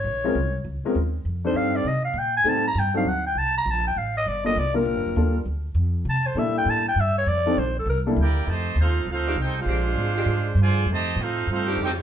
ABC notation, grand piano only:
X:1
M:4/4
L:1/8
Q:"Swing" 1/4=199
K:Fmix
V:1 name="Grand piano"
z [_A,C_DFB] z3 [A,CDFB] z2 | z [G,CDEA]3 z4 | [G,A,CEA] z2 [_G,CDEA] z4 | z4 z [G,B,DFA] z [G,B,DFB]- |
[G,B,DFB]2 [G,B,DFA] z4 z | z2 [G,B,D=EA]3 z3 | z [G,CDEA] z3 [G,B,D=EA] z2 | [K:F] z8 |
z8 | z8 |]